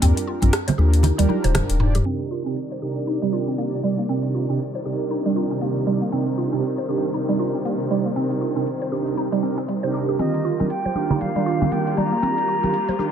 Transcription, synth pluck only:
0.02 0.16 C4 loud
0.27 0.41 F4 medium
0.42 0.52 C4 medium
0.67 0.73 C5 medium
0.78 0.92 G4 medium
1.03 1.18 D#4 medium
1.18 1.29 G3 loud
1.29 1.43 D#4 medium
1.44 1.53 C5 loud
1.54 1.63 C5 loud
1.80 1.88 D#4 medium
1.95 2.05 G4 medium
2.05 2.20 C4 loud
2.31 2.44 F4 medium
2.46 2.55 C4 medium
2.72 2.77 C5 medium
2.82 2.95 G4 medium
3.07 3.21 D#4 medium
3.22 3.32 G3 loud
3.33 3.47 F4 medium
3.48 3.57 C4 medium
3.58 3.66 A#3 medium
3.83 3.98 G3 medium
3.98 4.08 A#3 medium
4.09 4.23 C4 loud
4.34 4.48 F4 medium
4.49 4.59 C4 medium
4.75 4.81 C5 medium
4.85 4.99 G4 medium
5.11 5.25 D#4 medium
5.26 5.36 G3 medium
5.36 5.50 F4 loud
5.51 5.61 C4 medium
5.62 5.70 A#3 medium
5.87 6.01 G3 loud
6.02 6.11 A#3 medium
6.12 6.27 C4 loud
6.38 6.51 F4 medium
6.53 6.62 C4 medium
6.78 6.84 C5 medium
6.89 7.02 G4 medium
7.14 7.28 D#4 medium
7.29 7.39 G3 loud
7.39 7.54 F4 loud
7.54 7.64 C4 medium
7.65 7.73 A#3 medium
7.90 8.05 G3 loud
8.05 8.15 A#3 medium
8.16 8.30 C4 loud
8.41 8.55 F4 medium
8.56 8.66 C4 medium
8.82 8.87 C5 medium
8.92 9.05 G4 medium
9.17 9.32 D#4 medium
9.32 9.42 G3 medium
9.43 9.51 C4 medium
9.58 9.67 C4 medium
9.68 9.76 G3 medium
9.83 9.89 C5 medium
9.94 10.07 G4 medium
10.09 10.14 G4 medium
10.19 10.33 C4 loud
10.45 10.58 F4 medium
10.60 10.69 C4 medium
10.85 10.91 C5 medium
10.96 11.09 G4 medium
11.11 11.20 D#4 medium
11.36 11.46 G3 loud
11.46 11.60 F4 loud
11.61 11.71 C4 medium
11.72 11.80 A#3 medium
11.97 12.11 G3 loud
12.12 12.22 A#3 medium
12.22 12.37 C4 loud
12.48 12.62 F4 medium
12.63 12.72 C4 medium
12.89 12.94 C5 medium
12.99 13.12 G4 medium

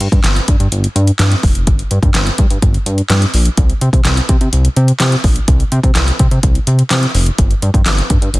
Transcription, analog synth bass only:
0.00 0.08 G2 loud
0.12 0.20 G2 loud
0.24 0.40 G1 loud
0.48 0.56 G2 medium
0.60 0.68 G2 loud
0.72 0.87 G1 loud
0.96 1.11 G2 loud
1.20 1.35 G2 loud
1.43 1.69 F1 medium
1.67 1.83 G1 loud
1.91 1.99 G2 loud
2.03 2.10 G2 loud
2.15 2.30 G1 loud
2.39 2.46 G2 loud
2.50 2.58 G2 loud
2.62 2.78 G1 loud
2.86 3.02 G2 loud
3.10 3.25 G2 loud
3.34 3.49 A#1 medium
3.58 3.73 C2 loud
3.81 3.89 C3 loud
3.93 4.01 C3 medium
4.05 4.21 C2 loud
4.29 4.37 C3 loud
4.41 4.49 C3 loud
4.53 4.68 C2 loud
4.76 4.92 C3 loud
5.00 5.16 C3 loud
5.24 5.40 A#1 medium
5.48 5.63 C2 loud
5.72 5.80 C3 loud
5.83 5.91 C3 loud
5.96 6.11 C2 loud
6.20 6.27 C3 loud
6.31 6.39 C3 loud
6.43 6.59 C2 loud
6.67 6.83 C3 loud
6.91 7.06 C3 loud
7.15 7.30 F1 medium
7.39 7.54 G1 loud
7.62 7.70 G2 loud
7.74 7.82 G2 loud
7.86 8.01 G1 loud
8.10 8.18 G2 loud
8.22 8.29 G2 loud
8.34 8.40 G1 loud

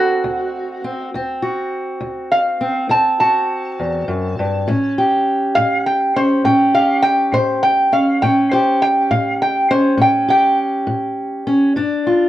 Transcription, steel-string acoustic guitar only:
0.00 0.83 C4 medium
0.00 1.09 F#4 medium
0.24 0.77 D2 medium
0.84 1.10 C4 medium
1.14 1.67 D2 medium
1.14 2.60 C4 medium
1.42 3.20 F#4 medium
2.01 2.54 D2 medium
2.61 2.89 C4 medium
2.90 3.43 D2 medium
2.90 4.64 C4 medium
3.21 4.64 F#4 medium
3.80 4.08 E2 medium
4.08 4.38 F#2 medium
4.39 4.68 G2 medium
4.68 5.21 A2 medium
4.68 6.16 C#4 medium
4.98 6.74 G4 medium
5.57 6.09 A2 medium
6.16 6.45 C#4 medium
6.44 6.98 A2 medium
6.44 7.91 C#4 medium
6.74 8.26 G4 medium
7.32 7.86 A2 medium
7.92 8.18 C#4 medium
8.23 8.75 A2 medium
8.23 9.69 C#4 medium
8.53 10.27 G4 medium
9.11 9.64 A2 medium
9.71 9.97 C#4 medium
9.98 10.51 A2 medium
9.98 11.46 C#4 medium
10.29 11.73 G4 medium
10.87 11.40 A2 medium
11.47 11.73 C#4 medium
11.76 12.29 G2 medium
11.76 12.29 D4 medium
12.07 12.29 F4 medium

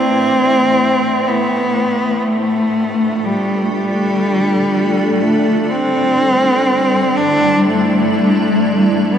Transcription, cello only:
0.00 1.29 C4 loud
1.27 2.28 B3 medium
2.27 3.26 A3 medium
3.25 3.73 G3 medium
3.74 5.23 G3 loud
5.21 5.72 A3 medium
5.70 7.19 C4 loud
7.17 7.66 D4 loud
7.68 9.15 A3 medium
9.14 9.18 B3 medium

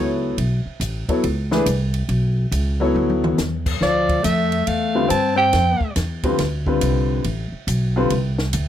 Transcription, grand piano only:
0.00 0.35 F#3 medium
0.00 0.35 B3 medium
0.00 0.35 E4 medium
0.00 0.35 A4 medium
0.00 0.35 C#5 medium
1.09 1.22 F#3 medium
1.09 1.22 B3 medium
1.09 1.22 E4 medium
1.09 1.22 A4 medium
1.09 1.23 C#5 medium
1.51 1.65 E3 medium
1.51 1.65 A3 medium
1.51 1.65 D4 medium
1.51 1.65 G#4 medium
1.51 1.65 B4 medium
2.80 3.35 F#3 medium
2.80 3.35 B3 medium
2.80 3.35 E4 medium
2.80 3.35 A4 medium
2.80 3.36 C#5 medium
4.95 5.08 D3 medium
4.95 5.08 G3 medium
4.95 5.08 C4 medium
4.95 5.09 F4 medium
4.95 5.09 B4 medium
6.24 6.37 D3 medium
6.24 6.37 G3 medium
6.24 6.38 C4 medium
6.24 6.38 F4 medium
6.24 6.38 B4 medium
6.67 7.22 D3 medium
6.67 7.22 G3 medium
6.67 7.22 C4 medium
6.67 7.22 F4 medium
6.67 7.22 B4 medium
7.96 8.09 D3 medium
7.96 8.10 G3 medium
7.96 8.10 C4 medium
7.96 8.09 F4 medium
7.96 8.10 B4 medium

